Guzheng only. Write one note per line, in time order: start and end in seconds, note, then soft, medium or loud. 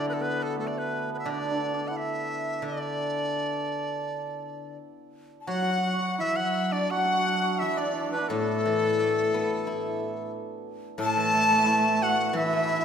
0.00 1.24 D3 medium
0.00 0.57 F#3 medium
1.26 2.61 D3 medium
2.62 4.76 D3 medium
5.47 7.60 F#3 medium
8.30 10.33 A2 medium
8.65 10.00 E3 soft
8.99 10.33 A3 soft
9.34 10.67 B3 soft
9.67 11.00 E4 soft
10.98 12.85 A2 medium
11.17 12.32 E3 soft
11.33 12.69 A3 soft
11.50 12.52 B3 soft
11.65 12.68 E4 soft
12.33 12.85 E3 medium
12.53 12.85 B3 soft
12.69 12.85 E4 soft